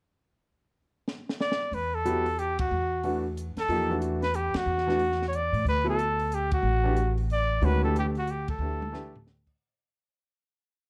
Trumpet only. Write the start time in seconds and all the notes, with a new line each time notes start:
1.41 D5
1.74 B4
1.95 A4
2.39 G4
2.60 F#4
3.59 A4
4.23 B4
4.36 G4
4.57 F#4
5.28 C#5
5.36 D5
5.69 B4
5.90 A4
6.34 G4
6.53 F#4
7.32 D5
7.65 B4
7.84 A4
7.99 G4
8.18 F#4
8.31 G4
8.50 A4